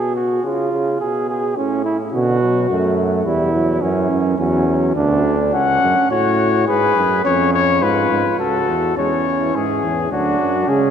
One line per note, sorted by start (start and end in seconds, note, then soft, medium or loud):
0.00 0.43 B2 medium
0.00 0.15 G#4 medium
0.16 0.43 F#4 medium
0.43 0.71 C#3 medium
0.43 1.00 F4 medium
0.72 1.00 C#3 medium
1.01 1.56 B2 medium
1.01 1.28 G#4 medium
1.30 1.58 G#4 medium
1.57 2.12 A2 medium
1.57 1.84 C#4 medium
1.85 1.97 E4 medium
2.12 2.66 B2 medium
2.12 2.41 D3 medium
2.12 2.96 F#4 medium
2.41 2.69 F#3 medium
2.69 3.25 F#2 medium
2.69 3.27 A3 medium
3.25 3.81 E2 medium
3.25 3.53 G3 medium
3.25 3.83 E4 medium
3.54 3.82 F#3 medium
3.81 4.10 F#2 medium
3.81 4.38 E3 medium
3.81 4.37 C#4 medium
4.10 4.38 F#2 medium
4.38 4.95 E2 medium
4.38 4.66 F#3 medium
4.38 4.94 C#4 medium
4.67 4.95 F#3 medium
4.95 5.55 D2 medium
4.95 5.27 B2 medium
4.95 5.55 D4 medium
5.25 5.53 D3 medium
5.53 5.82 C#2 medium
5.53 6.10 C#4 medium
5.53 6.06 F#5 medium
5.82 5.95 F#2 medium
6.10 6.66 A2 medium
6.10 6.66 F#4 medium
6.10 6.66 C#5 medium
6.67 6.96 G#2 medium
6.67 7.23 G#4 medium
6.67 7.23 B4 medium
6.96 7.24 F#2 medium
7.25 7.84 F2 medium
7.25 7.81 C#4 medium
7.25 7.53 C#5 medium
7.54 7.84 C#5 medium
7.82 8.10 G#2 medium
7.82 8.38 F4 medium
7.82 8.39 B4 medium
8.11 8.24 G#2 medium
8.38 8.70 C#2 medium
8.38 8.95 F#4 medium
8.38 8.96 A4 medium
8.68 8.96 E2 medium
8.96 9.50 E2 medium
8.96 9.10 G#3 medium
8.96 9.94 C#4 medium
8.96 9.57 C#5 medium
9.25 10.09 E3 medium
9.54 9.82 G#2 medium
9.54 10.11 G#4 medium
9.83 10.10 E2 medium
10.11 10.38 D2 medium
10.11 10.66 F#3 medium
10.11 10.69 D4 medium
10.11 10.70 F#4 medium
10.39 10.67 F#2 medium
10.67 10.90 C#3 medium
10.67 10.90 G#3 medium
10.67 10.90 C#4 medium
10.67 10.90 G#4 medium